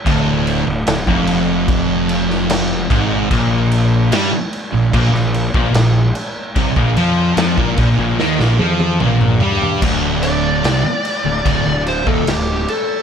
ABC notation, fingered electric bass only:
X:1
M:4/4
L:1/16
Q:1/4=74
K:Bb
V:1 name="Fingered electric bass" clef=bass
D,,,3 D,,, D,,, F,,,8- F,,, ^G,,,2 | B,,,4 G,, z2 B,,, B,,, B,,,2 B,,, B,,,2 z2 | C,, B,,, F,,2 F,, B,,, B,,, B,,, E,, B,,, F,,2 B,,,2 G,,2 | D,,,4 C,, z2 D,,, D,,, D,,,2 E,,, D,,,2 z2 |]